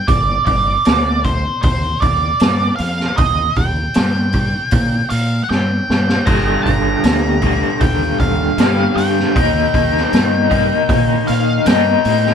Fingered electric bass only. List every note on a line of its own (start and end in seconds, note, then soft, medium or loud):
0.08 0.37 G1 medium
0.47 0.76 G1 medium
0.87 1.44 D2 medium
1.64 1.92 D#2 medium
2.02 2.31 D#2 medium
2.41 2.70 G2 medium
2.80 3.08 F2 medium
3.18 3.47 D#2 medium
3.57 3.85 D#2 medium
3.97 4.53 G2 medium
4.72 5.01 A#2 medium
5.11 5.40 A#2 medium
5.50 5.79 G2 medium
5.90 6.18 G2 medium
6.27 6.56 G1 medium
6.66 6.94 G1 medium
7.04 7.61 D2 medium
7.81 8.10 D#2 medium
8.20 8.48 D#2 medium
8.58 8.87 G2 medium
8.96 9.25 G2 medium
9.36 9.64 D#2 medium
9.74 10.02 D#2 medium
10.13 10.70 G2 medium
10.89 11.18 A#2 medium
11.29 11.58 A#2 medium
11.66 11.95 G2 medium
12.05 12.34 A2 medium